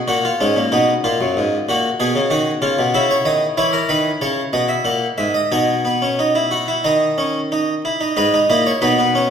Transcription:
harpsichord
0.08 A#2 F#4
0.25 F4
0.41 G#2 C#4
0.56 A#2
0.72 B2 D#4
1.04 A#2 F4
1.21 F#2
1.37 G#2
1.69 A#2 F#4
2.00 B2 G#4
2.15 C#3
2.30 D#3 F#4
2.62 C#3 F4
2.79 B2
2.94 C#3 E4 E5
3.11 C#5
3.25 D#3 D#5
3.57 E3 E4 C#5
3.73 A#4
3.89 D#3 B4
4.21 C#3 C#5
4.53 B2 D#5
4.69 E5
4.85 A#2 F#5
5.18 G#2 E5
5.34 D#5
5.52 B2 D#4 G#5
5.85 B3
6.02 C#4
6.19 D#4
6.35 E4
6.51 F#4
6.68 E4
6.84 D#3 D#4 D#5
7.18 C#4
7.52 D#4
7.85 E4
8.01 D#4
8.17 G#2 D#4 B4
8.34 D#4
8.50 A#2 E4 D#5
8.66 C#5
8.82 B2 D#4 B4
8.99 B3
9.15 C#4

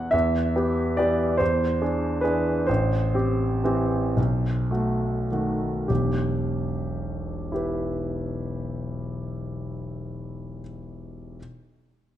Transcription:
grand piano
Already playing: F#5
0.11 E2 E5
0.56 B3 G4
0.97 E3 B3 G4 D5
1.38 E2 C5
1.81 D4 G#4
2.21 E3 D4 G#4 B4
2.67 A1 C5
3.14 C4 G4
3.64 E3 C4 G4
4.17 B1
4.71 A3 F#4
5.32 D#3 A3 F#4
5.88 E1 B1 G4
7.52 E4 G4
7.56 B4

